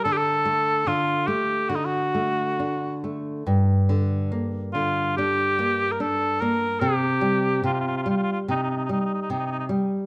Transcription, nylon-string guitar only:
\new Staff \with { instrumentName = "Nylon-string guitar" } { \clef bass \time 4/4 \key g \minor \tempo 4 = 72 d8 a8 d8 a8 d8 a8 d'8 a8 | g,8 d8 bes8 d8 d'8 bes8 d'8 bes8 | c8 g8 c8 g8 c8 g8 c8 g8 | }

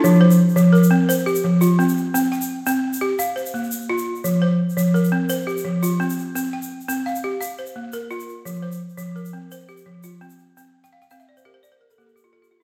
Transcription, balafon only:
\new Staff \with { instrumentName = "Balafon" } { \time 12/8 \key c \mixolydian \tempo 4. = 114 << { d'16 r16 c''4. bes'4 c''8 g'4 f'4. | r8 g''4. r4 f''8 c''4. r4 | r8 c''4. bes'4 c''8 g'4 f'4. | r8 g''4. f''4 f''8 c''4 bes'4. |
r8 c''4. bes'4 c''8 g'4 f'4. | r8. g''16 f''16 g''16 f''16 e''16 d''16 c''16 bes'16 c''16 d''16 c''16 bes'16 a'16 g'16 a'16 g'16 f'16 a'16 g'16 f'16 e'16 | } \\ { f4 r8 f4 c'4 r8 f4 c'4 | c'4 r8 c'4 g'8 r4 bes4 f'4 | f4 r8 f4 c'4 r8 f4 c'4 | c'4 r8 c'4 g'8 r4 bes4 f'4 |
f4 r8 f4 c'4 r8 f4 c'4 | c'4 r8 c'4 g'8 r4 bes4 f'4 | } >> }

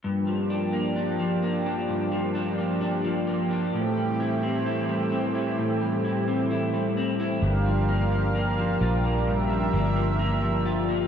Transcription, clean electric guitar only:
\new Staff \with { instrumentName = "Clean electric guitar" } { \time 4/4 \key g \dorian \tempo 4 = 65 g,16 f16 d'16 bes16 d'16 f16 bes16 d'16 g,16 f16 d'16 bes16 d'16 f16 bes16 d'16 | a,16 g16 e'16 c'16 e'16 g16 c'16 e'16 a,16 g16 e'16 c'16 e'16 g16 c'16 e'16 | g,16 f16 bes16 f16 bes16 f16 f'16 bes16 g,16 f16 bes16 f16 bes16 f16 f'16 bes16 | }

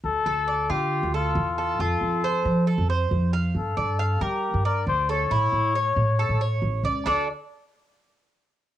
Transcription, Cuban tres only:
\new Staff \with { instrumentName = "Cuban tres" } { \time 4/4 \key d \minor \tempo 4 = 137 r8 a'8 d''8 f'4 a'4 a'8 | f'4 c''4 a'8 c''4 f''8~ | f''8 d''8 f''8 bes'4 d''4 a'8 | e'4 cis''4 a'8 cis''4 d''8 |
<d' a' d''>8 r2. r8 | }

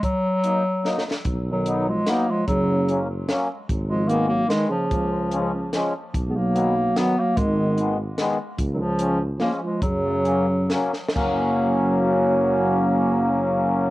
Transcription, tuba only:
\new Staff \with { instrumentName = "Tuba" } { \clef bass \time 3/4 \key fis \major \tempo 4 = 147 r2. | b,,2. | fis,,2. | gis,,2. |
cis,2. | b,,2. | gis,,2. | cis,2. |
fis,2. | fis,,2.~ | fis,,2. | }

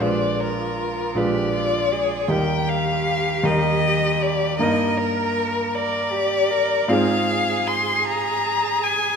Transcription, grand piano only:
\new Staff \with { instrumentName = "Grand piano" } { \time 6/8 \key ees \major \tempo 4. = 52 <bes,, aes f' ces''>4. <bes,, aes f' ces''>4. | <ees, g ees' bes'>4. <ees, g ees' bes'>4. | <g, bes ees' bes'>2. | <aes, c' f' aes'>2. | }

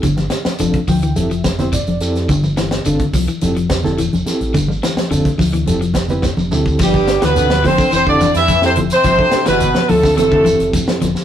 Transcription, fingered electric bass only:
\new Staff \with { instrumentName = "Fingered electric bass" } { \clef bass \time 4/4 \key f \lydian \tempo 4 = 107 g,,8 r8 f,,16 r16 d,8 f,,4~ f,,16 f,,16 f,8 | g,,4 g,,16 r16 c,16 r16 f,,8 f,16 f,,8 f,,16 r16 a,,16 | g,,8 r8 f,,16 r16 d,8 f,,4~ f,,16 f,,16 d,8 | g,,8. d,8. f,,16 r16 f,,8. f,8. f,,16 r16 |
g,,16 r8 g,,8 r16 d,8 f,,8. f,,16 r8 e,,16 r16 | }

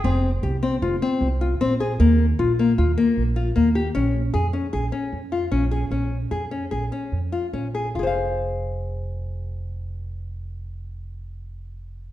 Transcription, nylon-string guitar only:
\new Staff \with { instrumentName = "Nylon-string guitar" } { \time 5/4 \key f \minor \tempo 4 = 151 c'4 g'8 c'8 f'8 c'4 f'8 c'8 aes'8 | bes4 f'8 bes8 f'8 bes4 f'8 bes8 g'8 | des'4 aes'8 des'8 aes'8 des'4 f'8 des'8 aes'8 | des'4 aes'8 des'8 aes'8 des'4 f'8 des'8 aes'8 |
<f' aes' c'' f''>1~ <f' aes' c'' f''>4~ | <f' aes' c'' f''>1~ <f' aes' c'' f''>4 | }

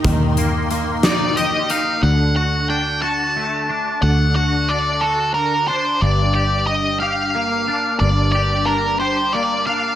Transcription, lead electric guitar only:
\new Staff \with { instrumentName = "Lead electric guitar" } { \time 6/8 \key d \phrygian \tempo 4. = 60 r4. d''8 ees''8 f''8 | fis''8 fis''8 g''8 a''4. | fis''8 fis''8 d''8 a'8 bes'8 c''8 | d''8 d''8 ees''8 f''4. |
d''8 d''8 bes'8 c''8 d''8 f''8 | }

